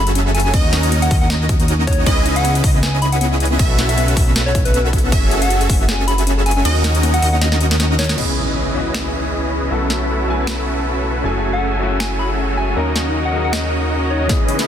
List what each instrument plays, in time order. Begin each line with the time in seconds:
Already playing: analog synth bass F#1, supersaw synth C#4 F#4 G#4 A4 E5, synth pluck E5
0.07 closed hi-hat
0.15 synth arpeggio sound C#4, closed hi-hat
0.26 synth arpeggio sound G#4
0.34 soft synth lead G#5, closed hi-hat
0.40 closed hi-hat
0.45 synth arpeggio sound C#4, soft synth lead G#5
0.54 analog synth bass D#2, synth arpeggio sound A#3, supersaw synth C#4 D#4 F#4 A#4 D#5, synth pluck D#5, kick, closed hi-hat, crash
0.73 synth arpeggio sound D#4, snare, closed hi-hat
0.83 closed hi-hat
0.92 synth arpeggio sound A#3, closed hi-hat
1.02 synth arpeggio sound F#4, soft synth lead F#5, closed hi-hat
1.11 analog synth bass D#2, supersaw synth C#4 D#4 F#4 A#4 D#5, synth pluck D#5, kick, open hi-hat
1.21 synth arpeggio sound A#3, soft synth lead F#5
1.30 synth arpeggio sound A#3, soft synth lead D#5, snare, closed hi-hat
1.40 soft synth lead D#5
1.49 synth arpeggio sound F#4, kick, closed hi-hat
1.60 synth arpeggio sound A#3, closed hi-hat
1.68 synth arpeggio sound D#4, closed hi-hat
1.79 synth arpeggio sound A#3
1.87 soft synth lead C#5, kick, closed hi-hat
1.93 closed hi-hat
1.98 synth arpeggio sound F#4
2.06 analog synth bass C#2, synth arpeggio sound B3, supersaw synth C#4 E4 G#4 B4 D#5, synth pluck D#5, kick, closed hi-hat, crash
2.26 synth arpeggio sound D#4, closed hi-hat
2.36 soft synth lead F#5, closed hi-hat
2.45 synth arpeggio sound B3, closed hi-hat
2.55 synth arpeggio sound E4, closed hi-hat
2.64 analog synth bass C#2, supersaw synth C#4 E4 G#4 B4 D#5, synth pluck D#5, kick, open hi-hat
2.74 synth arpeggio sound B3
2.83 synth arpeggio sound B3, soft synth lead G#5, snare, closed hi-hat
3.02 synth arpeggio sound D#4, soft synth lead B5, closed hi-hat
3.12 soft synth lead F#5, closed hi-hat
3.21 synth arpeggio sound B3, soft synth lead F#5, closed hi-hat
3.32 synth arpeggio sound E4
3.40 closed hi-hat
3.45 closed hi-hat
3.51 synth arpeggio sound B3
3.59 analog synth bass B1, supersaw synth C#4 F#4 A4 B4 E5, synth pluck E5, kick, closed hi-hat, crash
3.78 synth arpeggio sound E4, snare, closed hi-hat
3.89 soft synth lead E5, closed hi-hat
3.98 synth arpeggio sound B3, soft synth lead E5, closed hi-hat
4.08 synth arpeggio sound F#4, closed hi-hat
4.17 analog synth bass B1, supersaw synth C#4 F#4 A4 B4 E5, synth pluck E5, kick, open hi-hat
4.27 synth arpeggio sound B3
4.36 synth arpeggio sound B3, snare, closed hi-hat
4.46 soft synth lead C#5
4.55 synth arpeggio sound E4, kick, closed hi-hat
4.65 soft synth lead B4, closed hi-hat
4.74 synth arpeggio sound B3, closed hi-hat
4.84 synth arpeggio sound F#4
4.93 kick, closed hi-hat
4.98 closed hi-hat
5.04 synth arpeggio sound B3
5.12 analog synth bass F#1, synth arpeggio sound C#4, supersaw synth C#4 F#4 G#4 A4 E5, synth pluck E5, kick, closed hi-hat, crash
5.31 synth arpeggio sound F#4, closed hi-hat
5.42 soft synth lead F#5, closed hi-hat
5.50 synth arpeggio sound C#4, closed hi-hat
5.61 synth arpeggio sound G#4, closed hi-hat
5.69 analog synth bass F#1, supersaw synth C#4 F#4 G#4 A4 E5, synth pluck E5, kick, open hi-hat
5.80 synth arpeggio sound C#4
5.89 synth arpeggio sound C#4, soft synth lead G#5, snare, closed hi-hat
6.08 synth arpeggio sound F#4, soft synth lead B5, closed hi-hat
6.18 closed hi-hat
6.27 synth arpeggio sound C#4, closed hi-hat
6.37 synth arpeggio sound G#4
6.46 soft synth lead G#5, closed hi-hat
6.51 closed hi-hat
6.56 synth arpeggio sound C#4, soft synth lead G#5
6.65 analog synth bass D#2, synth arpeggio sound A#3, supersaw synth C#4 D#4 F#4 A#4 D#5, synth pluck D#5, closed hi-hat, crash
6.84 synth arpeggio sound D#4, snare, closed hi-hat
6.95 closed hi-hat
7.03 synth arpeggio sound A#3, closed hi-hat
7.14 synth arpeggio sound F#4, soft synth lead F#5, closed hi-hat
7.22 analog synth bass D#2, supersaw synth C#4 D#4 F#4 A#4 D#5, synth pluck D#5, open hi-hat
7.33 synth arpeggio sound A#3, soft synth lead F#5
7.41 synth arpeggio sound A#3, soft synth lead D#5, snare, closed hi-hat
7.52 soft synth lead D#5, snare
7.61 synth arpeggio sound F#4, closed hi-hat
7.71 snare, closed hi-hat
7.80 synth arpeggio sound C#4, snare, closed hi-hat
7.90 synth arpeggio sound C#4
7.99 soft synth lead C#5, snare, closed hi-hat
8.04 closed hi-hat
8.09 synth arpeggio sound C#5, snare
8.16 analog synth bass C#2, string section C#3 E3 B3 D#5, grand piano E3 B3 C#4 D#5, supersaw synth C#4 E4 G#4 B4 D#5, crash, impact
8.20 grand piano G#4
8.73 grand piano E3 B3 C#4 D#5
8.77 grand piano F#4
8.94 finger snap, snare
9.69 analog synth bass B1, grand piano F#3 B3 C#4 E4, string section A3 E4, supersaw synth C#4 F#4 A4 B4 E5
9.73 grand piano A4
9.90 snare
10.26 grand piano F#3 B3 C#4 E4 G#5
10.47 finger snap, snare
11.22 analog synth bass F#1, grand piano F#3 A3 C#4 E4 G#5, string section F#3 A3 E4 G#5, supersaw synth C#4 F#4 G#4 A4 E5
11.53 soft synth lead F#5
11.79 grand piano F#3 A3 C#4 E4 F#4
12.00 soft synth lead G#5, finger snap, snare
12.19 soft synth lead B5
12.57 soft synth lead G#5
12.68 soft synth lead G#5
12.75 analog synth bass D#2, string section D#3 A#3 C#4 F#4, grand piano F#3 A#3 C#4 D#4, supersaw synth C#4 D#4 F#4 A#4 D#5
12.79 grand piano A#4
12.96 snare
13.25 soft synth lead F#5
13.32 grand piano F#3 A#3 C#4 D#4
13.36 grand piano G#4
13.44 soft synth lead F#5
13.53 soft synth lead D#5, finger snap, snare
13.63 soft synth lead D#5
14.10 soft synth lead C#5
14.27 string section C#3 E3 B3 D#5, grand piano E3 B3 C#4 D#5, synth arpeggio sound B3, supersaw synth C#4 E4 G#4 B4 D#5, kick, snare, closed hi-hat, riser
14.31 grand piano G#4
14.48 synth arpeggio sound D#4, closed hi-hat
14.59 snare, closed hi-hat